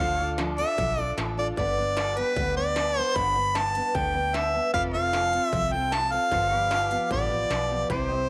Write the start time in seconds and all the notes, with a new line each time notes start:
Already playing: F5
0.00 D2 D3 F3 D4 F4 A4 C5
0.19 D4 F4 A4
0.26 D5
0.38 F3 D4 F4 A4, snare, closed hi-hat
0.58 D4 F4 A4 E5, closed hi-hat
0.78 B1 D3 F3 D4 F4 A4, kick, closed hi-hat
0.98 D4 F4 A4 D5
1.17 A1 F3 D4 F4 A4, snare, closed hi-hat
1.37 D4 F4 A4 D5
1.57 G1 G2 D3 G3 B3 D4 B4 D5, kick, closed hi-hat
1.78 G3 B3 D4 B4
1.97 G3 B3 D4 F4 A4 B4 D5, snare, closed hi-hat
2.17 G3 B3 D4 B4, closed hi-hat
2.22 G4 B4
2.36 D2 G2 D3 G3 B3 D4 B4, kick, closed hi-hat
2.56 G3 B3 D4 B4 D5
2.76 G3 B3 D4 B4, snare, closed hi-hat
2.96 G3 B3 D4 B4 C5
3.16 G1 G2 D3 G3 B3 D4 B4 B5, kick, closed hi-hat
3.36 G3 B3 D4 B4
3.55 G3 B3 D4 B4 A5, snare, closed hi-hat
3.75 G3 B3 D4 B4, closed hi-hat
3.95 D2 G2 D3 G3 B3 D4 B4 G5, kick, closed hi-hat
4.14 G3 B3 D4 B4
4.33 G3 B3 D4 B4 E5, snare, closed hi-hat
4.54 G3 B3 D4 B4
4.73 F1 F3 C4 F4 A4 B4 D5 F5, kick, closed hi-hat
4.93 C4 F4 A4 F5
5.00 A4 C5
5.13 F3 C4 F4 A4, snare, closed hi-hat
5.32 C4 F4 A4, closed hi-hat
5.45 E5
5.52 C2 F3 C4 F4 A4, kick, closed hi-hat
5.72 C4 F4 A4 G5
5.91 F3 C4 F4 A4 A5, snare, closed hi-hat
6.11 C4 F4 A4 F5
6.31 G1 G2 D3 F3 B3 F4 G4 A4 C5, kick, closed hi-hat
6.50 F3 B3 F4 G4
6.58 G4 B4 D5
6.70 F3 B3 F4 G4, snare, closed hi-hat
6.90 F3 B3 F4 G4, closed hi-hat
7.11 A1 G2 D3 F3 B3 F4 G4 D5, kick, closed hi-hat
7.30 F3 B3 F4 G4
7.50 B1 F3 B3 F4 G4, snare, closed hi-hat
7.70 F3 B3 F4 G4
7.90 C2 C3 G3 C4 E4 G4 C5 D5, kick, closed hi-hat
8.09 C4 E4 G4
8.18 E5